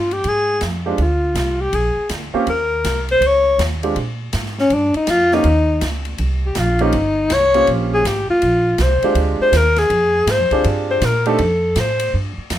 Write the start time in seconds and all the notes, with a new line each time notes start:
Already playing: G2 F4
0.11 G4, ride
0.24 G#2, ride
0.28 G#4
0.61 F2, snare, hi-hat pedal, ride
0.86 G#3 C4 D4 F4 G4
0.98 D2 F4, ride
1.35 C2, snare, hi-hat pedal, ride
1.61 G4
1.73 A#1 G#4, ride
1.96 muted upright bass stroke
2.09 D2, snare, hi-hat pedal, ride
2.34 A#3 C4 C#4 F4 G4, muted upright bass stroke
2.47 D#2 A#4, ride
2.84 C2, snare, hi-hat pedal, ride
3.09 C5, ride
3.20 C#2, ride
3.26 C#5
3.58 D#2, snare, hi-hat pedal, ride
3.83 G#3 C4 D4 F4 G4, ride
3.96 A#2, ride
4.33 G#2, snare, hi-hat pedal, ride
4.46 snare
4.58 C#4, snare
4.70 G2 D4, ride
4.94 D#4, muted upright bass stroke, ride
5.07 F2 F4, snare, hi-hat pedal, ride
5.31 A#3 C4 C#4 D#4 F4 G4, snare
5.44 D#2, ride
5.81 C#2, snare, hi-hat pedal, ride
6.05 ride
6.18 C2, ride
6.46 G4
6.55 A#1 F4, snare, hi-hat pedal, ride
6.79 A#3 C4 C#4 D#4 F4 G4, ride
6.92 G1, ride
7.30 C2 C#5, snare, hi-hat pedal, ride
7.54 A#3 C4 C#4 F4 G4, ride
7.67 A#1, ride
7.94 G#4
8.04 G#1 G4, snare, hi-hat pedal, ride
8.30 F4, muted upright bass stroke
8.42 A#1, ride
8.78 C2, snare, hi-hat pedal, ride
8.82 C5
9.02 G#3 C4 D4 F4 G4, muted upright bass stroke, ride
9.15 D2, ride
9.40 C5, muted upright bass stroke
9.52 D#2, snare, hi-hat pedal, ride
9.57 A#4
9.76 G#4, snare, ride
9.90 F2, ride
10.26 G#2, snare, hi-hat pedal, ride
10.31 C5
10.39 F2
10.51 D2 C4 D4 F4 G4 G#4, kick, ride
10.64 G2, ride
10.91 C5
11.01 A#2 A#4, snare, hi-hat pedal, ride
11.26 A3 C4 D4 D#4 G4 A4, ride
11.38 F2, ride
11.76 A2, snare, hi-hat pedal, ride
11.80 C5
11.99 ride
12.14 G2
12.38 muted upright bass stroke
12.50 F2, snare, hi-hat pedal, ride